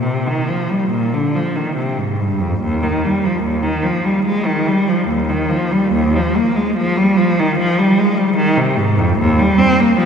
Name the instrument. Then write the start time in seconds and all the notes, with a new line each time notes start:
cello
0.02 C3
0.26 D#3
0.48 F3
0.70 G3
0.90 A#2
1.14 D3
1.35 F3
1.56 D#3
1.76 C3
1.99 G#2
2.20 G2
2.40 F2
2.61 D#2
2.83 D#3
3.04 G3
3.25 F3
3.43 D#2
3.63 D#3
3.83 F3
4.05 G3
4.26 G#3
4.46 D#3
4.68 G3
4.88 F3
5.08 D#2
5.29 D#3
5.49 F3
5.72 G3
5.93 D#2
6.16 F3
6.37 A#3
6.56 G#3
6.77 F3
6.97 G3
7.16 F3
7.40 D#3
7.59 F3
7.79 G3
7.99 G#3
8.17 G3
8.37 D#3
8.57 C3
8.78 G#2
8.98 F2
9.19 D#2
9.39 G3
9.59 C4
9.80 A#3
9.98 F3